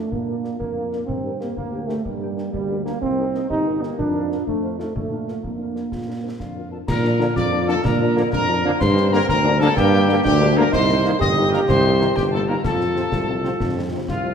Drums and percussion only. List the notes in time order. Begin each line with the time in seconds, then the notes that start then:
0.12 concert bass drum
0.44 snare
0.60 concert bass drum
0.93 snare
1.08 concert bass drum
1.41 snare
1.57 concert bass drum
1.89 snare
2.05 concert bass drum
2.38 snare
2.54 concert bass drum
2.86 snare
3.02 concert bass drum
3.35 snare
3.50 concert bass drum
3.83 snare
3.99 concert bass drum
4.32 snare
4.47 concert bass drum
4.80 snare
4.96 concert bass drum
5.28 snare
5.44 concert bass drum
5.76 snare
5.92 concert bass drum, snare
6.40 concert bass drum, snare
6.88 concert bass drum, snare, crash
7.04 snare
7.21 snare
7.36 concert bass drum, snare
7.69 snare
7.85 concert bass drum, snare
8.17 snare
8.33 concert bass drum, snare
8.81 concert bass drum, snare, crash
8.97 snare
9.13 snare
9.29 concert bass drum, snare
9.61 snare
9.77 concert bass drum, snare
10.09 snare
10.25 concert bass drum, snare
10.73 concert bass drum, snare, crash
10.89 snare
11.05 snare
11.21 concert bass drum, snare
11.53 snare
11.69 concert bass drum, snare
12.01 snare
12.17 concert bass drum, snare
12.64 concert bass drum, snare, crash
12.81 snare
12.96 snare
13.12 concert bass drum, snare
13.45 snare
13.60 concert bass drum, snare
14.08 concert bass drum, snare